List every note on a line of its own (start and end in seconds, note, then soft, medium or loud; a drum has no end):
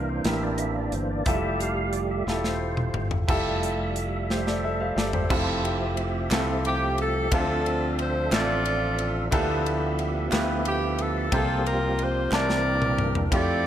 0.00 0.21 C2 medium
0.00 0.22 C3 medium
0.00 1.23 E3 medium
0.00 1.24 A#3 soft
0.00 0.25 C4 medium
0.00 1.24 D4 medium
0.00 0.26 E4 medium
0.00 0.27 G4 medium
0.00 0.27 A#4 medium
0.09 0.26 C5 medium
0.25 0.89 A1 medium
0.25 1.02 C4 medium
0.25 1.02 E4 soft
0.25 1.03 G4 medium
0.25 1.03 A#4 medium
0.25 0.43 E5 loud
0.25 snare loud
0.25 closed hi-hat medium
0.44 0.55 D5 medium
0.56 0.60 D#5 medium
0.56 0.77 E5 medium
0.56 closed hi-hat medium
0.78 0.95 D5 medium
0.92 1.24 G1 medium
0.92 1.11 C5 medium
0.92 closed hi-hat soft
1.11 1.26 D5 medium
1.26 2.24 F1 medium
1.26 2.24 G3 medium
1.26 2.24 A3 soft
1.26 2.03 E4 medium
1.26 2.03 F4 medium
1.26 2.03 G4 medium
1.26 2.24 G4 medium
1.26 2.04 A4 medium
1.26 1.62 E5 medium
1.26 kick loud
1.26 closed hi-hat medium
1.60 1.95 F5 medium
1.60 closed hi-hat soft
1.93 2.01 D5 medium
1.93 closed hi-hat soft
2.11 2.38 E5 medium
2.27 2.91 E1 medium
2.27 3.04 E4 medium
2.27 3.05 F4 medium
2.27 3.05 G4 medium
2.27 3.05 A4 medium
2.27 snare medium
2.37 2.45 D5 medium
2.44 3.08 C5 medium
2.44 snare medium
2.77 mid tom medium
2.94 3.25 G1 medium
2.94 mid tom medium
3.11 floor tom medium
3.27 4.93 F1 medium
3.27 5.26 G3 soft
3.27 5.26 A3 soft
3.27 4.05 E4 medium
3.27 4.05 F4 medium
3.27 4.05 G4 medium
3.27 4.06 A4 medium
3.27 5.26 E5 medium
3.27 kick loud
3.27 crash medium
3.63 closed hi-hat medium
3.96 closed hi-hat soft
4.30 4.46 G4 medium
4.30 4.46 C5 medium
4.30 snare medium
4.47 4.63 A4 medium
4.47 4.63 D5 medium
4.47 snare medium
4.64 4.80 A4 medium
4.64 4.80 E5 medium
4.80 4.96 C5 medium
4.80 4.96 F5 medium
4.96 5.28 G1 medium
4.96 5.14 A4 medium
4.96 5.13 D5 medium
4.96 snare medium
5.13 5.29 G4 soft
5.13 5.46 C5 medium
5.13 floor tom medium
5.29 6.27 F1 loud
5.29 7.28 F3 medium
5.29 7.28 A3 medium
5.29 6.06 C4 medium
5.29 7.28 C4 medium
5.29 6.06 E4 medium
5.29 6.07 F4 medium
5.29 5.37 F#4 medium
5.29 6.07 G4 medium
5.29 6.07 A4 medium
5.29 7.28 E5 medium
5.29 kick loud
5.29 crash loud
5.38 7.31 G4 medium
5.65 ride soft
5.97 ride soft
6.31 7.27 C2 medium
6.31 7.07 C4 medium
6.31 7.07 E4 medium
6.31 7.08 F4 medium
6.31 7.08 G4 medium
6.31 7.08 A4 medium
6.31 snare loud
6.31 clap loud
6.31 ride medium
6.65 6.97 G4 medium
6.65 ride soft
6.98 7.33 A4 medium
6.98 ride soft
7.31 8.28 D2 loud
7.31 8.28 D3 medium
7.31 9.28 F3 medium
7.31 8.07 C4 medium
7.31 9.28 C4 medium
7.31 8.29 C4 medium
7.31 9.28 D4 medium
7.31 8.08 D4 medium
7.31 8.08 F4 medium
7.31 8.29 F4 medium
7.31 9.28 A4 medium
7.31 8.09 A4 medium
7.31 7.96 A4 medium
7.31 9.28 E5 medium
7.31 8.08 E5 medium
7.31 kick loud
7.31 ride medium
7.66 ride soft
7.99 8.34 C5 medium
7.99 ride soft
8.31 9.28 A1 loud
8.31 9.08 C4 medium
8.31 9.08 D4 medium
8.31 9.09 F4 medium
8.31 9.29 F4 medium
8.31 9.29 A4 medium
8.31 9.09 A4 medium
8.31 9.09 D5 loud
8.31 9.08 E5 medium
8.31 snare loud
8.31 clap loud
8.31 ride medium
8.66 ride soft
8.99 ride soft
9.31 10.28 D2 medium
9.31 10.28 D3 medium
9.31 11.29 F3 medium
9.31 11.29 A3 medium
9.31 9.38 A#3 medium
9.31 11.29 B3 medium
9.31 10.08 E4 medium
9.31 10.08 F4 medium
9.31 10.08 G4 medium
9.31 11.29 G4 medium
9.31 10.08 A4 loud
9.31 11.29 E5 medium
9.31 kick loud
9.31 ride medium
9.37 10.11 B3 medium
9.66 ride soft
9.99 ride soft
10.31 11.28 D2 loud
10.31 11.07 B3 medium
10.31 11.07 E4 medium
10.31 11.08 F4 medium
10.31 11.08 G4 medium
10.31 11.08 B4 medium
10.31 snare loud
10.31 clap loud
10.31 ride medium
10.65 10.98 G4 medium
10.65 ride medium
10.99 11.33 A4 medium
10.99 ride soft
11.31 12.28 C2 loud
11.31 12.28 C3 medium
11.31 12.32 F3 medium
11.31 12.32 G3 medium
11.31 12.07 A#3 medium
11.31 12.32 A#3 medium
11.31 12.08 C4 medium
11.31 12.32 C4 medium
11.31 11.38 E4 medium
11.31 12.29 F4 medium
11.31 12.08 G4 medium
11.31 12.32 G4 medium
11.31 11.64 A4 medium
11.31 12.08 C5 medium
11.31 kick loud
11.31 ride medium
11.38 12.11 F4 medium
11.66 12.00 A#4 medium
11.66 ride soft
11.99 12.34 C5 medium
11.99 ride soft
12.31 13.28 C2 loud
12.31 13.28 C3 medium
12.31 13.32 E3 medium
12.31 13.07 A#3 medium
12.31 13.32 A#3 medium
12.31 13.07 C4 medium
12.31 13.30 C4 medium
12.31 13.07 D4 medium
12.31 13.32 D4 medium
12.31 13.08 E4 medium
12.31 13.29 G4 medium
12.31 12.39 G#4 medium
12.31 13.28 A#4 medium
12.31 13.08 D5 loud
12.31 13.08 A5 medium
12.31 snare medium
12.31 clap loud
12.39 13.35 A#4 medium
12.50 snare medium
12.82 mid tom medium
12.98 mid tom medium
13.15 floor tom medium
13.31 13.67 F2 loud
13.31 13.67 F3 medium
13.31 13.38 G3 soft
13.31 13.67 A3 medium
13.31 13.67 C4 medium
13.31 13.67 E4 medium
13.31 13.67 F4 medium
13.31 13.67 G4 medium
13.31 13.67 A4 medium
13.31 13.67 E5 medium
13.31 kick loud
13.31 ride medium
13.35 13.67 A3 medium
13.35 13.67 D5 loud